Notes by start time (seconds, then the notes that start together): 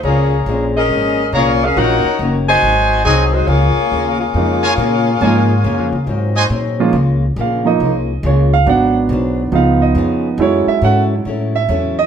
0.03 C#2 A#2 F3 G#3 A#3 C#4 F4 G#4 C#5 F5 A#5
0.46 A#1 A#2 F3 G#3 C#4
0.77 C#4 G#4 A#4 D#5
0.89 G#1 A#2 F3 G#3 C#4
1.32 C2 A#2 F3 G#3 A#3 C#4 F4 G#4 C#5 F5 A#5
1.64 C#4 G#4 A#4 F5
1.76 A#1 D#3 F#3 A#3 C#4 D#4 F4 F#4 A#4 C#5 D#5 F#5 A#5
2.05 muted upright bass stroke
2.19 F#1 D#3 A#3 C#4 F#4
2.49 F#4 C5 D#5 G#5
2.62 G#1 G#2 F#3 C4 D#4
3.04 C2 G#2 F#3 C4 D#4 F#4 G#4 C5 D#5 G#5
3.33 G#3 D#4 F#4 C5
3.47 C#2 C#3 G#3 A#3 F4 G#4 C#5
3.51 A#3 F4
3.77 muted upright bass stroke
3.91 D#2 C#3 G#3 A#3 F4
4.19 A#3 F4 G#4 C#5
4.34 F2 C#3 F3 G#3 A#3 C#4 D#4 F4
4.63 F4 A#4 C#5 G#5
4.77 A#2 C#3 G#3 A#3 F4
5.20 G#2 C#3 F3 G#3 A#3 C#4 D#4 F4 A#4 C#5 G#5
5.64 F#2 C#3 G#3 A#3 F4
5.79 F2
5.92 C#2
6.06 G#2 F#3 C4 D#4
6.36 F#4 C5 D#5 G#5
6.49 G#2 A#2 F#3 C4 D#4
6.80 F3 G#3 A#3 C#4 F4
6.93 C#2 C#3 G#3 A#3
6.97 F4
7.36 A#1 C#3 G#3 A#3 F4
7.41 F5
7.65 F3 A#3 D#4 D#5
7.80 C2 C#3 G#3 A#3 F4
8.23 C#2 C#3 G#3 A#3 F4 C#5
8.54 F5
8.66 G#1 G#2 F#3 B3 D4 F#5
9.09 B1 G#2 F#3 B3 D4
9.52 C#2 C#3 F3 G#3 B3 D#4 F5
9.56 F4
9.82 D#5
9.95 F2 C#3 G#3 B3 F4
10.38 F#2 F#3 G#3 C#4 E4
10.42 A4 C#5
10.67 E5, muted upright bass stroke
10.82 G#2 F#3 C#4 E4 A4 F#5
11.25 A2 F#3 C#4 E4 A4
11.56 E5
11.69 E2 F#3 C#4 E4 A4
11.99 D#5